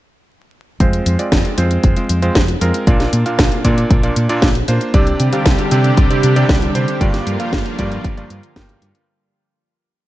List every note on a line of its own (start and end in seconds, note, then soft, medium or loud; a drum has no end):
0.80 0.99 F1 medium
0.80 1.16 G#3 medium
0.80 1.16 C4 medium
0.80 1.16 F4 medium
0.80 1.16 C5 loud
0.80 kick loud
0.80 closed hi-hat medium
0.93 closed hi-hat soft
1.06 1.16 F2 medium
1.06 closed hi-hat loud
1.19 1.55 G#3 medium
1.19 1.55 C4 medium
1.19 1.55 F4 medium
1.19 1.55 D5 medium
1.19 closed hi-hat soft
1.32 1.41 F1 medium
1.32 kick loud
1.32 snare loud
1.32 closed hi-hat medium
1.45 closed hi-hat soft
1.58 1.77 F2 medium
1.58 1.94 G#3 medium
1.58 1.94 C4 medium
1.58 1.94 F4 medium
1.58 1.94 C5 loud
1.58 closed hi-hat loud
1.71 closed hi-hat soft
1.84 1.93 F1 medium
1.84 kick loud
1.84 closed hi-hat medium
1.96 2.19 G#3 medium
1.96 2.19 C4 medium
1.96 2.19 F4 medium
1.96 2.19 C5 medium
1.96 closed hi-hat soft
2.09 2.28 F2 medium
2.09 closed hi-hat loud
2.22 2.40 G#3 loud
2.22 2.40 C4 medium
2.22 2.40 F4 medium
2.22 2.40 C5 loud
2.22 closed hi-hat soft
2.35 2.54 F1 medium
2.35 kick loud
2.35 snare loud
2.35 closed hi-hat medium
2.48 closed hi-hat soft
2.61 2.71 F2 medium
2.61 2.84 G#3 medium
2.61 2.84 C4 medium
2.61 2.84 F4 medium
2.61 2.84 A#4 loud
2.61 closed hi-hat medium
2.74 closed hi-hat soft
2.87 3.06 A#1 medium
2.87 3.23 A#2 medium
2.87 3.23 A#3 medium
2.87 3.23 D4 medium
2.87 3.23 F4 medium
2.87 3.23 D5 loud
2.87 kick loud
2.87 closed hi-hat medium
3.00 snare soft
3.00 closed hi-hat soft
3.13 3.22 A#2 medium
3.13 closed hi-hat medium
3.26 3.62 A#2 medium
3.26 3.62 A#3 medium
3.26 3.62 D4 medium
3.26 3.62 F4 medium
3.26 3.62 F5 medium
3.26 closed hi-hat soft
3.39 3.48 A#1 medium
3.39 kick loud
3.39 snare loud
3.39 closed hi-hat medium
3.52 closed hi-hat soft
3.64 4.00 A#2 medium
3.64 3.84 A#2 medium
3.64 4.00 A#3 medium
3.64 4.00 D4 medium
3.64 4.00 F4 medium
3.64 4.00 D5 loud
3.64 kick medium
3.64 closed hi-hat medium
3.78 closed hi-hat soft
3.90 4.09 A#1 medium
3.90 kick loud
3.90 closed hi-hat medium
4.03 4.26 A#2 medium
4.03 4.26 A#3 medium
4.03 4.26 D4 medium
4.03 4.26 F4 medium
4.03 4.26 D5 medium
4.03 closed hi-hat soft
4.16 4.26 A#2 medium
4.16 closed hi-hat medium
4.29 4.47 A#2 loud
4.29 4.47 A#3 medium
4.29 4.47 D4 medium
4.29 4.47 F4 medium
4.29 4.47 D5 loud
4.29 closed hi-hat soft
4.42 4.61 A#1 medium
4.42 kick loud
4.42 snare loud
4.42 closed hi-hat medium
4.55 closed hi-hat soft
4.68 4.78 A#2 medium
4.68 4.91 A#3 medium
4.68 4.91 D4 medium
4.68 4.91 F4 medium
4.68 4.91 C5 loud
4.68 closed hi-hat medium
4.81 closed hi-hat soft
4.94 5.13 C2 medium
4.94 5.30 C3 medium
4.94 6.99 C3 medium
4.94 9.04 D3 medium
4.94 9.04 G3 medium
4.94 5.30 C4 medium
4.94 5.30 D4 medium
4.94 6.99 D4 medium
4.94 5.30 G4 medium
4.94 6.99 G4 medium
4.94 5.30 D5 loud
4.94 kick loud
4.94 closed hi-hat medium
5.07 closed hi-hat soft
5.20 5.29 C3 medium
5.20 closed hi-hat medium
5.33 5.68 C3 medium
5.33 5.68 C4 medium
5.33 5.68 D4 medium
5.33 5.68 G4 medium
5.33 5.68 F5 medium
5.33 closed hi-hat soft
5.46 5.55 C2 medium
5.46 kick loud
5.46 snare loud
5.46 closed hi-hat medium
5.58 closed hi-hat soft
5.71 6.07 C3 medium
5.71 5.90 C3 medium
5.71 6.07 C4 medium
5.71 6.07 D4 medium
5.71 6.07 G4 medium
5.71 6.07 D5 loud
5.71 closed hi-hat medium
5.84 closed hi-hat soft
5.97 6.07 C2 medium
5.97 kick loud
5.97 closed hi-hat medium
6.10 6.33 C3 medium
6.10 6.33 C4 medium
6.10 6.33 D4 medium
6.10 6.33 G4 medium
6.10 6.33 D5 medium
6.10 closed hi-hat soft
6.23 6.42 C3 medium
6.23 closed hi-hat medium
6.36 6.54 C3 medium
6.36 6.54 C4 medium
6.36 6.54 D4 medium
6.36 6.54 G4 medium
6.36 6.54 D5 loud
6.36 closed hi-hat soft
6.49 6.68 C2 medium
6.49 kick loud
6.49 snare loud
6.49 closed hi-hat medium
6.62 closed hi-hat soft
6.75 6.84 C3 medium
6.75 6.98 C4 medium
6.75 6.98 D4 medium
6.75 6.98 G4 medium
6.75 6.98 C5 loud
6.75 closed hi-hat medium
6.88 closed hi-hat soft
7.01 7.20 G1 medium
7.01 7.37 G2 medium
7.01 9.06 F3 medium
7.01 7.37 A#3 medium
7.01 9.06 A#3 medium
7.01 7.37 F4 medium
7.01 9.06 F4 medium
7.01 7.37 G4 medium
7.01 7.37 D5 loud
7.01 kick loud
7.01 closed hi-hat medium
7.14 snare soft
7.14 closed hi-hat soft
7.27 7.36 G2 medium
7.27 closed hi-hat medium
7.40 7.75 G2 medium
7.40 7.75 A#3 medium
7.40 7.75 F4 medium
7.40 7.75 G4 medium
7.40 7.75 F5 medium
7.40 closed hi-hat soft
7.53 7.62 G1 loud
7.53 kick loud
7.53 snare loud
7.53 closed hi-hat medium
7.66 closed hi-hat soft
7.79 7.97 G2 medium
7.79 8.14 G2 medium
7.79 8.14 A#3 medium
7.79 8.14 F4 medium
7.79 8.14 G4 medium
7.79 8.14 D5 loud
7.79 kick medium
7.79 closed hi-hat medium
7.92 closed hi-hat soft
8.04 8.23 G1 medium
8.04 kick loud
8.04 closed hi-hat medium
8.17 8.40 G2 medium
8.17 8.40 A#3 medium
8.17 8.40 F4 medium
8.17 8.40 G4 medium
8.17 8.40 D5 medium
8.17 closed hi-hat soft
8.30 8.40 G2 medium
8.30 closed hi-hat medium
8.43 closed hi-hat soft
8.56 8.75 G1 medium
8.56 9.05 G2 medium
8.56 9.05 A#3 medium
8.56 9.05 F4 medium
8.56 9.05 G4 medium
8.56 9.05 G5 loud
8.56 kick loud
8.56 snare loud
8.56 closed hi-hat medium
8.69 closed hi-hat soft
8.82 8.91 G2 medium
8.82 closed hi-hat medium
8.95 closed hi-hat soft